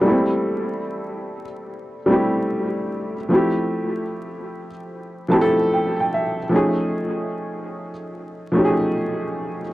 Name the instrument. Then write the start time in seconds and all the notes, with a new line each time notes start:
upright piano
0.01 G3 A3 A#3
0.06 E4 A4
0.11 C4
2.06 G3 A3 C4
2.11 E4 G4
3.29 F3 A3 C4
3.33 E4 G4
5.28 F3 A3 C4 A5
5.33 E4 G4
5.41 A4
5.74 G5
6.00 G5
6.14 E5
6.49 F3 A3 C#4
6.54 D#4 G#4
8.52 F3 A3 C#4
8.57 D#4 G4
8.65 G#4